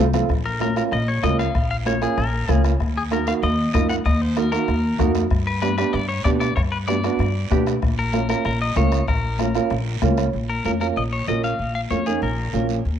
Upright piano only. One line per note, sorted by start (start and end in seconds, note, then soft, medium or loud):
0.13 0.29 A3 medium
0.13 0.29 C4 medium
0.13 0.30 F4 medium
0.60 0.66 A#3 medium
0.60 0.66 C#4 medium
0.60 0.66 F4 medium
0.76 0.93 A#3 medium
0.76 0.93 C#4 medium
0.76 0.93 F4 medium
1.23 1.45 A#3 medium
1.23 1.45 C#4 medium
1.23 1.46 F4 medium
1.86 1.91 A#3 medium
1.86 1.92 C#4 medium
1.86 1.92 F4 medium
2.01 2.18 A#3 medium
2.01 2.18 C#4 medium
2.01 2.18 F4 medium
2.48 2.70 A#3 medium
2.48 2.71 C#4 medium
2.48 2.71 F4 medium
3.11 3.17 A#3 medium
3.11 3.17 D#4 medium
3.11 3.17 F#4 medium
3.27 3.43 A#3 medium
3.27 3.44 D#4 medium
3.27 3.44 F#4 medium
3.74 3.96 A#3 medium
3.74 3.96 D#4 medium
3.74 3.96 F4 medium
4.37 4.42 A#3 medium
4.37 4.42 D#4 medium
4.37 4.43 F#4 medium
4.52 4.69 A#3 medium
4.52 4.69 D#4 medium
4.52 4.69 F#4 medium
4.99 5.21 A#3 medium
4.99 5.21 D#4 medium
4.99 5.21 F#4 medium
5.62 5.68 B3 medium
5.62 5.68 D4 medium
5.62 5.68 G4 medium
5.78 5.94 B3 medium
5.78 5.95 D4 medium
5.78 5.95 G4 medium
6.25 6.47 B3 medium
6.25 6.47 D4 medium
6.25 6.47 G4 medium
6.88 6.93 B3 medium
6.88 6.94 D4 medium
6.88 6.94 G4 medium
7.04 7.20 B3 medium
7.04 7.20 D4 medium
7.04 7.21 F#4 medium
7.51 7.73 B3 medium
7.51 7.73 D4 medium
7.51 7.73 G4 loud
8.13 8.19 A#3 medium
8.13 8.19 C#4 medium
8.13 8.19 F4 medium
8.28 8.45 A#3 medium
8.28 8.46 C#4 medium
8.28 8.46 F4 medium
8.76 8.98 A#3 medium
8.76 8.98 C#4 medium
8.76 8.99 F4 medium
9.39 9.45 A#3 medium
9.39 9.45 C#4 medium
9.39 9.45 F4 medium
9.55 9.71 A#3 medium
9.55 9.72 C#4 medium
9.55 9.72 F4 loud
10.02 10.24 A#3 medium
10.02 10.24 C#4 medium
10.02 10.24 F4 medium
10.02 10.17 F5 medium
10.18 10.33 C#5 medium
10.65 10.71 A#3 medium
10.65 10.71 C#4 medium
10.65 10.71 F4 medium
10.80 10.97 A#3 medium
10.80 10.97 C#4 medium
10.80 10.98 F4 medium
11.28 11.50 A#3 medium
11.28 11.50 C#4 medium
11.28 11.50 F4 medium
11.90 11.96 A#3 medium
11.90 11.96 C#4 medium
11.90 11.97 F4 medium
12.06 12.23 A#3 medium
12.06 12.23 C#4 medium
12.06 12.23 D#4 medium
12.53 12.75 A#3 medium
12.53 12.76 C#4 medium
12.53 12.76 F4 medium